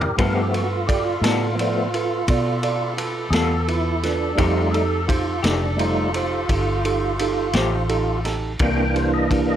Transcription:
Already playing: A2 A#4
0.01 G4, floor tom
0.16 G2 F3 G3 A3 B3 F4 A4 A#4 B4, kick, ride
0.21 A4
0.34 G4
0.52 F4 F#4 A4 B4, ride
0.71 F4
0.87 F4 G4 A4 D5, kick, ride
1.05 F4
1.22 A2 B3 D#4 F4 A4 D5, snare, ride
1.26 G3
1.42 F4
1.54 F3 A3 B3 F4
1.59 F4 A4 D5, ride
1.94 F4 A4 B4, ride
2.28 B2 F4 G4 A4 D5, kick, ride
2.63 F4 A4 D5, ride
2.97 F4 A4 B4, ride
3.30 E2 F4 G#4 A4, snare, ride
3.34 G3 B3 A4 B4
3.68 E4 F4 A4 B4, ride
4.03 D4 F4 A4 B4, snare, ride
4.35 F2 F3 G3 A3 D#4 F4, kick, ride
4.39 G4 A4
4.68 G#4
4.72 D#4 G4 A4, ride
5.08 D#4 F4 G4 C5, kick, ride
5.43 F1 F3 A3 D4 D#4 G4 A4, snare, ride
5.77 G3 A3 D#4 F4 G4 C5, ride
6.13 D#4 F4 G4 C5, ride
6.49 G1 D#4 G4 A4, kick, ride
6.85 D#4 G4 A4, ride
7.19 D#4 G4 A4, ride
7.53 A1 F3 A3 D#4 G4 C5, snare, ride
7.89 D#4 G4 A4, ride
8.25 D#4 G4 A4, snare, ride
8.59 C2 C3 E3 A#3 D4 E4 A#4 G5, kick, ride
8.95 D4 E4 G4 C5, ride
9.13 D#5
9.31 D4 E4 G4, kick, ride
9.49 D#5

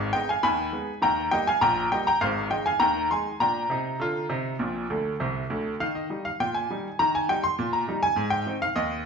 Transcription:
Already playing: D5 F5
0.13 G#3 B3 D#4 D#5 G5
0.29 F5 G#5
0.43 D#2 D#3 G#5 B5
0.73 G#3 B3 D#4
1.02 D#2 D#3 G5 A#5
1.31 G3 A#3 D#4 D#5 G5
1.47 F5 G#5
1.61 A#1 A#2 G5 A#5
1.92 G3 A#3 D#4 D#5 G5
2.07 G5 A#5
2.21 G#1 G#2 C5 F5
2.50 D#3 G#3 D#4 D#5 G5
2.66 F5 G#5
2.80 D#2 D#3 G5 A#5
3.11 D#3 G#3 D#4 G#5 C6
3.40 A#2 D4 G5 A#5
3.70 C3 D#4
4.00 D3 F4
4.29 C3 D#4
4.59 A#1 A#2
4.90 D2 D3
5.20 C2 C3
5.50 D2 D3
5.80 D#3 F5
5.95 D#5
6.10 D#3 G3 D#4
6.25 F5
6.40 A#2 G5
6.54 G#5
6.70 D#3 G3 D#4
6.99 D#3 A#5
7.15 G#5
7.29 D#3 G3 D#4 G5
7.44 C6
7.59 A#2
7.73 A#5
7.88 D#3 G3 D#4
8.03 G#5
8.16 G#2
8.30 G5
8.46 D#3 C4 D#4
8.62 F5
8.76 D#2 D#5

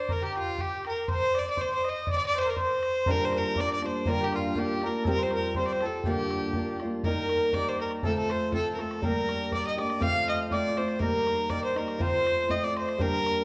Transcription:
Already playing: C5 D5
0.09 A#4, bodhran
0.22 G4, bodhran
0.36 F4, bodhran
0.47 bodhran
0.58 G4, bodhran
0.85 A#4, bodhran
1.08 C5, bodhran
1.21 bodhran
1.34 D5, bodhran
1.39 D5
1.46 D5, bodhran
1.50 D5
1.57 C5, bodhran
1.61 C5
1.75 C5
1.84 D#5, bodhran
1.89 D#5
2.07 D5, bodhran
2.12 D5
2.17 D5, bodhran
2.27 D5
2.34 C5, bodhran
2.40 C5
2.45 A#4, bodhran
2.50 A#4
2.56 C5, bodhran
2.61 C5
2.83 bodhran
3.06 G2 D3 G3 A#3 D4 F4 A#4, bodhran
3.11 A#4
3.21 C5
3.33 A#4, bodhran
3.38 A#4
3.44 bodhran
3.55 G3 A#3 D4 F4 D5, bodhran
3.60 D5
3.71 D5
3.82 G3 A#3 D4 F4 C5, bodhran
3.87 C5
4.05 G2 D3 G3 A#3 D4 F4 A#4, bodhran
4.19 G4, bodhran
4.24 G4
4.32 F4, bodhran
4.44 bodhran
4.55 G3 A#3 D4 F4 G4, bodhran
4.82 G3 D4 F4 A#4, bodhran
4.86 A#3 A#4
5.03 F3 G3 C4 A4 A#4, bodhran
5.08 F4 G4 A#4
5.18 C5
5.23 C5
5.31 A#4, bodhran
5.35 A#4
5.43 bodhran
5.55 G3 C4 F4 G4 C5, bodhran
5.59 C5
5.67 D5
5.73 C5
5.81 F4 G4 A4, bodhran
5.85 C4 A4
6.04 G2 D3 G3 A#3 D4 F4 G4, bodhran
6.17 bodhran
6.31 bodhran
6.42 bodhran
6.53 G3 A#3 F4, bodhran
6.58 D4
6.80 D4 F4, bodhran
6.84 G3 A#3
7.03 D#3 G3 A#3 D#4 G4 A#4, bodhran
7.20 A#4
7.29 bodhran
7.36 A#4
7.53 G3 A#3 D#4 G4 D5, bodhran
7.69 C5
7.80 A#4, bodhran
7.91 bodhran
8.03 F3 A3 C4 F4 A4, bodhran
8.16 A4
8.30 C5, bodhran
8.52 F3 A3 C4 F4 A4, bodhran
8.75 F4 A#4
8.79 A3 C4 A4, bodhran
8.91 bodhran
9.02 G3 A#3 D4 G4 A#4, bodhran
9.29 bodhran
9.51 G3 A#3 D4 G4 D5, bodhran
9.66 D#5
9.78 A#3 D4 G4 D5, bodhran
9.90 bodhran
10.00 F3 A3 C4 F4 F5, bodhran
10.28 D#5, bodhran
10.50 F3 A3 C4 F4 D5, bodhran
10.76 A3 C4 F4 C5, bodhran
10.88 bodhran
10.99 D#3 G3 A#3 D#4 A#4, bodhran
11.27 bodhran
11.49 D#3 G3 A#3 D#4 D5, bodhran
11.64 C5
11.75 G3 A#3 D#4 A#4, bodhran
11.88 bodhran
11.98 F3 A3 C4 F4 C5, bodhran
12.27 bodhran
12.48 F3 A3 C4 F4 D#5, bodhran
12.62 D5
12.76 C5, bodhran
12.89 bodhran
12.98 G3 A#3 D4 G4 A#4, bodhran
13.26 bodhran

